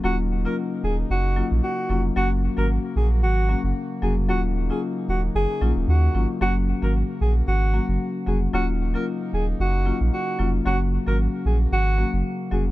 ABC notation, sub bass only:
X:1
M:4/4
L:1/16
Q:"Swing 16ths" 1/4=113
K:Ebm
V:1 name="Sub bass" clef=bass
E,,,4 z2 E,,,2 G,,,3 B,,, z2 F,,,2 | G,,,3 A,,,2 z B,,,2 A,,,3 G,,, z2 F,,,2 | E,,,4 z2 E,,,2 G,,, z B,,, E,,, E,,2 A,,, z | G,,,3 A,,,2 z B,,,2 A,,,3 G,,, z2 F,,,2 |
E,,,4 z2 E,,,2 G,,,3 B,,, z2 F,,,2 | G,,,3 A,,,2 z B,,,2 A,,,3 G,,, z2 F,,,2 |]